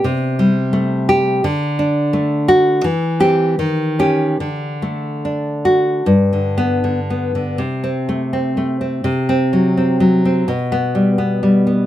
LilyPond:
\new Staff \with { instrumentName = "Nylon-string guitar" } { \time 2/4 \key g \major \tempo 4 = 82 << { r4. g'8 | r4. fis'8 | r8 g'8 r8 g'8 | r4. fis'8 |
\tuplet 3/2 { r4 b8 } r4 | \tuplet 3/2 { r8 c'4 } r4 | \tuplet 3/2 { r8 c'4 } r4 | \tuplet 3/2 { r8 b4 } r4 | } \\ { c8 g8 a4 | d8 d'8 a4 | e8 c'8 ees8 des'8 | d8 a8 d'4 |
\tuplet 3/2 { g,8 d4 d8 b8 d8 } | \tuplet 3/2 { c4 a8 c'8 a8 c'8 } | \tuplet 3/2 { c4 fis8 c'8 fis8 c'8 } | \tuplet 3/2 { b,4 g8 b8 g8 b8 } | } >> }